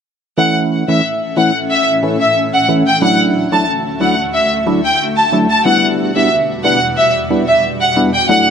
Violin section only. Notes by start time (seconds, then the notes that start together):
0.38 F#5
0.89 E5
1.37 F#5
1.70 E5
2.21 E5
2.54 F#5
2.87 G5
3.02 F#5
3.53 A5
4.01 F#5
4.34 E5
4.84 G5
5.17 A5
5.50 A5
5.66 F#5
6.16 E5
6.64 F#5
6.97 E5
7.48 E5
7.81 F#5
8.14 G5
8.29 F#5